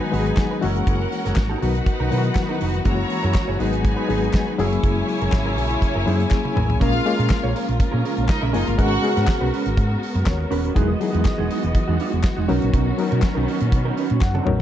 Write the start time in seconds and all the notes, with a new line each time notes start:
Already playing: D#3 F#3 G#3 B3 D#4 F#4 B4 G#5
0.01 D#4 F#4 B4
0.12 G#1 D#3 F#3 G#3 B3 D#4 F#4 B4, open hi-hat
0.19 G#4
0.26 muted clean electric guitar stroke, closed hi-hat
0.37 kick, snare, clap, closed hi-hat
0.51 D#4 F#4 B4
0.61 F#1 E3 G#3 A#3 C#4 E4 F#4 G#4 A#4 F#5, open hi-hat
0.65 A#4
0.76 muted clean electric guitar stroke, closed hi-hat
0.87 F#1 E4 G#4 A#4, kick, closed hi-hat
1.02 muted clean electric guitar stroke
1.12 muted clean electric guitar stroke, open hi-hat
1.25 F#1 E4 G#4 A#4, snare, closed hi-hat
1.36 G#1, muted clean electric guitar stroke, kick, snare, clap, closed hi-hat
1.49 E4 G#4 A#4
1.61 B1 D#3 F#3 B3 D#4 F#4 A#4 B4 F#5, open hi-hat
1.75 muted clean electric guitar stroke, closed hi-hat
1.86 muted clean electric guitar stroke, kick, closed hi-hat
2.00 B1 B3 D#4 A#4
2.11 B2 D#3 F#3 B3 D#4 E4 A#4 B4, open hi-hat
2.18 F#4
2.24 muted clean electric guitar stroke, closed hi-hat
2.35 muted clean electric guitar stroke, kick, snare, clap, closed hi-hat
2.49 B3 D#4 A#4
2.61 F1 B3 D#4 A#4, open hi-hat
2.74 muted clean electric guitar stroke, closed hi-hat
2.85 F#1 E3 G#3 A#3 C#4 E4 F#4 G#4 A#4 C#5 A#5, kick, closed hi-hat
2.98 muted clean electric guitar stroke
3.10 muted clean electric guitar stroke, open hi-hat
3.23 F#2 E4 G#4 A#4, closed hi-hat
3.34 muted clean electric guitar stroke, kick, snare, clap, closed hi-hat
3.48 F#1 E4 G#4 C#5
3.59 G#1 D#3 F#3 G#3 B3 D#4 F#4 G#4 B4 G#5, open hi-hat
3.73 muted clean electric guitar stroke, closed hi-hat
3.85 muted clean electric guitar stroke, kick, closed hi-hat
3.97 D#4 F#4 B4
4.08 G#1 F#3 G#3 B3 D#4 F#4 G#4 B4, open hi-hat
4.22 muted clean electric guitar stroke, closed hi-hat
4.33 muted clean electric guitar stroke, kick, snare, clap, closed hi-hat
4.47 D#4 F#4 B4
4.58 F#1 C#3 F#3 G#3 A#3 C#4 E4 G#4 A#4 C#5 G#5, open hi-hat
4.65 A#3
4.72 muted clean electric guitar stroke, closed hi-hat
4.84 F#1 E4 G#4 A#4, kick, closed hi-hat
4.98 muted clean electric guitar stroke
5.08 muted clean electric guitar stroke, open hi-hat
5.21 F#1 E4 G#4 A#4, closed hi-hat
5.32 G#1, muted clean electric guitar stroke, kick, snare, clap, closed hi-hat
5.46 E4 G#4 A#4
5.57 A#1 E4 G#4 A#4, open hi-hat
5.71 muted clean electric guitar stroke, closed hi-hat
5.81 muted clean electric guitar stroke, kick, closed hi-hat
5.95 F#1 E4 G#4 A#4
6.06 F#2 F#3 A#3 C#4 E4 G#4 C#5, open hi-hat
6.20 muted clean electric guitar stroke, closed hi-hat
6.31 muted clean electric guitar stroke, kick, snare, clap
6.45 muted clean electric guitar stroke, high tom
6.55 A1 E4 G#4 A#4, mid tom
6.69 muted clean electric guitar stroke, floor tom
6.80 A#1 C#3 F3 G#3 A#3 C#4 F4 G#4 A#4 F5, kick, closed hi-hat
6.94 muted clean electric guitar stroke
7.05 G#3 A#3 C#4 F4 A#4, muted clean electric guitar stroke, open hi-hat
7.18 A#2 C#4 G#4 A#4, closed hi-hat
7.30 kick, snare, clap, closed hi-hat
7.43 A#1 C#4 G#4 C#5
7.54 C#4 G#4 A#4, open hi-hat
7.67 A#1, muted clean electric guitar stroke, closed hi-hat
7.78 muted clean electric guitar stroke, kick, closed hi-hat
7.91 A#2 C#4 G#4 A#4
8.03 C#4 G#4 A#4, open hi-hat
8.17 A#1, muted clean electric guitar stroke, closed hi-hat
8.28 D#4 D#5, muted clean electric guitar stroke, kick, snare, clap, closed hi-hat
8.41 A#1 C#4 E4 G#4 A#4 E5
8.53 F#1 G#3 A#3 C#4 D#4 F4 G#4 A#4 D#5, open hi-hat
8.66 G1 F4 F5, muted clean electric guitar stroke, closed hi-hat
8.78 G#1 G#3 B3 C#4 F#4 A#4 B4 F#5, kick, closed hi-hat
8.92 muted clean electric guitar stroke
9.02 G#3 B3 C#4 F#4 G#4, muted clean electric guitar stroke, open hi-hat
9.16 G#2 C#4 F#4 B4, snare, closed hi-hat
9.27 muted clean electric guitar stroke, kick, snare, clap, closed hi-hat
9.41 B1 C#4 F#4 B4
9.52 C#4 F#4 B4, open hi-hat
9.66 G#1, muted clean electric guitar stroke, closed hi-hat
9.77 G#2, muted clean electric guitar stroke, kick, closed hi-hat
9.90 muted clean electric guitar stroke
10.03 open hi-hat
10.15 F#2, muted clean electric guitar stroke, closed hi-hat
10.26 D#2 A#4 C#5, muted clean electric guitar stroke, kick, snare, clap, closed hi-hat
10.40 muted clean electric guitar stroke
10.51 D#1 C#4 F#4 A#4 B4, open hi-hat
10.64 muted clean electric guitar stroke, closed hi-hat
10.75 E1 E3 F#3 G#3 B3 D#4 E4 F#4 G#4 D#5, kick, closed hi-hat
10.89 muted clean electric guitar stroke
11.00 F#3 B3 D#4 E4 G#4, muted clean electric guitar stroke, open hi-hat
11.13 E2 G#3 D#4 F#4, closed hi-hat
11.25 kick, snare, clap, closed hi-hat
11.38 E1 G#3 D#4 G#4
11.51 G#3 D#4 F#4, open hi-hat
11.63 E1, muted clean electric guitar stroke, closed hi-hat
11.75 muted clean electric guitar stroke, kick, closed hi-hat
11.88 E2 G#3 D#4 F#4
11.99 G#3 D#4 F#4, open hi-hat
12.12 E1, muted clean electric guitar stroke, closed hi-hat
12.23 kick, snare, clap, closed hi-hat
12.37 E1 G#3 D#4 F#4
12.48 B1 D#3 F#3 B3 C#4 D#4 A#4, open hi-hat
12.62 A#1, muted clean electric guitar stroke, closed hi-hat
12.73 B1 C#4 D#4 A#4, kick, closed hi-hat
12.86 muted clean electric guitar stroke
12.98 F#3 B3 C#4 D#4 A#4, muted clean electric guitar stroke, open hi-hat
13.11 B2 C#4 D#4 A#4, closed hi-hat
13.22 muted clean electric guitar stroke, kick, snare, clap, closed hi-hat
13.35 B1 C#4 D#4 A#4
13.47 C#4 D#4 A#4, open hi-hat
13.60 A#2, muted clean electric guitar stroke, closed hi-hat
13.72 B2, muted clean electric guitar stroke, kick, closed hi-hat
13.85 C#4 D#4 A#4
13.97 C#4 D#4 B4, open hi-hat
14.10 A#2, muted clean electric guitar stroke, closed hi-hat
14.21 F#2 F#5, muted clean electric guitar stroke, kick, snare, clap
14.35 C#4 D#4 A#4, high tom
14.45 A1 F#3 B3 C#4 D#4 A#4 C#5, muted clean electric guitar stroke, mid tom
14.59 muted clean electric guitar stroke